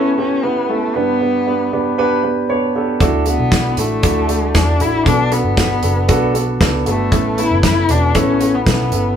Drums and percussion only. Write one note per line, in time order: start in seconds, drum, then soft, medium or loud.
3.00 kick medium
3.00 closed hi-hat medium
3.26 closed hi-hat medium
3.52 kick loud
3.52 snare medium
3.52 closed hi-hat medium
3.77 closed hi-hat medium
4.03 kick loud
4.03 closed hi-hat medium
4.29 closed hi-hat medium
4.55 kick loud
4.55 snare medium
4.55 closed hi-hat medium
4.80 closed hi-hat medium
5.06 kick medium
5.06 closed hi-hat medium
5.32 closed hi-hat medium
5.57 kick loud
5.57 snare medium
5.57 closed hi-hat medium
5.83 closed hi-hat medium
6.09 kick loud
6.09 closed hi-hat medium
6.35 closed hi-hat medium
6.61 kick loud
6.61 snare medium
6.61 closed hi-hat medium
6.86 closed hi-hat medium
7.12 kick medium
7.12 closed hi-hat medium
7.38 closed hi-hat medium
7.63 kick medium
7.63 snare medium
7.63 closed hi-hat medium
7.89 closed hi-hat medium
8.15 kick medium
8.15 closed hi-hat medium
8.41 closed hi-hat medium
8.66 kick loud
8.66 snare medium
8.66 closed hi-hat medium
8.92 closed hi-hat medium